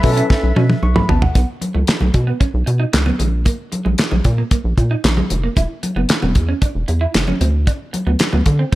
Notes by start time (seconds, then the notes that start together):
Already playing: A4 B4 E5
0.03 B2 F#3 C#4 E4 A4 B4 E5, muted clean electric guitar stroke, kick, open hi-hat
0.17 C#4, closed hi-hat
0.30 kick, snare, muted conga
0.43 B1
0.56 B2 C#4, high tom, muted conga
0.70 high tom
0.83 B1 C#6, muted clean electric guitar stroke, muted conga
0.96 A3 B5, mid tom, high conga
1.09 A1 B3 A5, floor tom, low conga
1.22 F#5, floor tom
1.35 B1 B3, kick, closed hi-hat
1.61 muted clean electric guitar stroke, closed hi-hat, high conga
1.74 C#2 A3, high conga
1.87 snare, clap, closed hi-hat, muted conga
2.01 B1 A3, high conga, low conga
2.14 B2, muted clean electric guitar stroke, kick, closed hi-hat
2.27 B3
2.40 C#4, kick, closed hi-hat, muted conga
2.54 B1
2.66 B2, muted clean electric guitar stroke, closed hi-hat
2.80 D#4
2.93 C#2, muted clean electric guitar stroke, snare, clap, closed hi-hat
3.06 B3, high conga, low conga
3.19 A#1 G#3, closed hi-hat, muted conga, low conga
3.45 A#3, kick, closed hi-hat, muted conga
3.72 muted clean electric guitar stroke, closed hi-hat, high conga
3.85 A#1 G#3, high conga
3.98 snare, clap, closed hi-hat, muted conga
4.11 A#1 G#3, high conga, low conga
4.24 A#2, muted clean electric guitar stroke, kick, closed hi-hat
4.38 A#3
4.51 A#3, kick, closed hi-hat, muted conga
4.64 A#1
4.78 A#2, muted clean electric guitar stroke, kick, closed hi-hat
4.91 D#4
5.04 A#1, snare, clap, closed hi-hat
5.17 G#3, high conga, low conga
5.30 F1, muted clean electric guitar stroke, closed hi-hat, muted conga, low conga
5.43 A#3
5.56 E1 E4, kick, closed hi-hat, muted conga
5.83 muted clean electric guitar stroke, closed hi-hat, high conga
5.96 F#1 B3, high conga
6.09 snare, clap, closed hi-hat
6.22 E1 B3, high conga, low conga
6.35 E2, muted clean electric guitar stroke, kick, closed hi-hat
6.49 C#4
6.62 D4, kick, closed hi-hat, muted conga
6.75 E1
6.88 E2, muted clean electric guitar stroke, closed hi-hat, muted conga
7.01 E4
7.14 F#1, muted clean electric guitar stroke, snare, clap, closed hi-hat, muted conga
7.28 C#4, high conga, low conga
7.41 D2 C4, closed hi-hat, muted conga, low conga
7.67 D4, kick, closed hi-hat
7.93 muted clean electric guitar stroke, closed hi-hat, high conga
8.07 D2 B3, high conga
8.19 snare, clap, closed hi-hat, muted conga
8.33 D2 B3, high conga, low conga
8.46 D3, muted clean electric guitar stroke, kick, closed hi-hat
8.59 C4